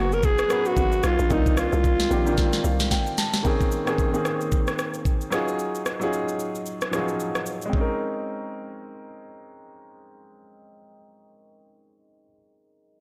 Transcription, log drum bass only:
Already playing: F#1
0.77 G#1
1.04 B1
1.19 A#1
1.30 C2
1.73 C2
2.11 A#1
2.64 C2

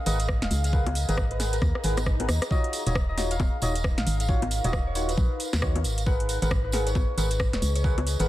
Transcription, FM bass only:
0.06 G#1
0.42 D#1
0.51 C#2
1.09 G#1
1.62 D#2
1.84 G#1
2.29 D#2
2.87 D#1
3.62 D#1
3.98 A#1
4.07 G#1
4.64 D#1
5.18 A#1
5.53 D#2
5.84 G#1
6.42 G#1
7.18 G#1
7.53 D#1
7.62 C#2
8.20 G#1

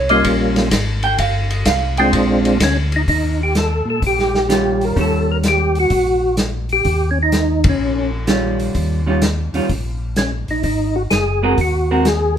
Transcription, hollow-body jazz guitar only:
0.10 D#5
1.04 G5
1.20 F5
1.51 D#5
1.66 F5
1.98 G5
4.49 D#3 G3 C#4 F4
4.96 D#3 G3 C#4
8.27 D#3 G3 C#4 F4
9.06 D#3 G3 C#4 F4
9.54 D#3 G3 C#4 F4
11.43 G#3 C4 F#4 A#4
11.91 G#3 C4 F#4 A#4

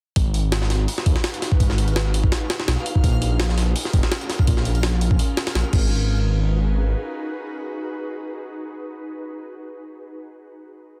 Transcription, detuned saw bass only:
0.16 G#1
1.06 D#2
1.60 G#1
2.68 B1
3.04 A#1
3.93 F1
4.47 A#1
5.55 A#1
5.73 G#1

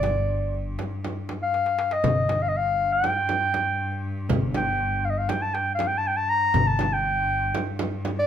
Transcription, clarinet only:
Already playing: D5
1.43 F5
1.93 D#5
2.43 F5
2.49 D#5
2.57 F5
2.93 G5
4.57 G5
5.05 F5
5.10 D#5
5.18 F5
5.29 G5
5.42 A5
5.54 G5
5.75 F5
5.87 G5
5.98 A5
6.08 G5
6.17 A5
6.30 A#5
6.67 A5
6.93 G5
8.19 D5

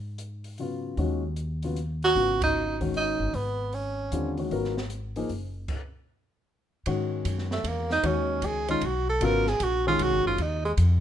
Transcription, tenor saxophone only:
2.04 F#4
2.44 D#4
2.97 D#4
3.35 B3
3.74 C#4
7.53 A3
7.68 A#3
7.92 D#4
8.06 C#4
8.46 G#4
8.71 F4
8.86 F#4
9.09 A4
9.24 A#4
9.48 G#4
9.63 F#4
9.88 F4
10.03 F#4
10.27 F4
10.42 D#4
10.65 G#3

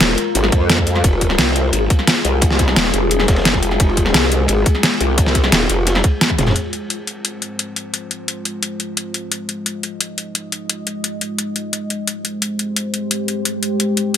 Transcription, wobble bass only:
0.01 D#1
0.35 G#1
0.52 F2
1.04 F1
1.39 C2
1.73 G#1
2.25 C2
2.76 D#1
2.94 F1
3.28 F1
3.80 F1
4.14 C2
4.49 G#1
5.01 C2
5.52 D#1
5.70 F1
6.38 F1

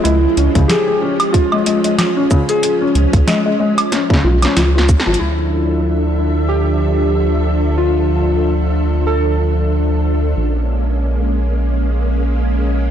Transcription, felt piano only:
0.05 G#3
0.37 C#4
0.55 C#3
0.70 G#4
0.88 G#4
1.02 C#4
1.52 G#3
1.66 G#3
1.84 G#3
2.17 C#4
2.31 C#3
2.49 G#4
2.63 G#4
2.81 C#4
3.28 G#3
3.46 G#3
3.60 G#3
3.92 C#4
4.10 C#3
4.24 F4
4.42 C#4
4.57 F4
4.75 F4
5.07 F3

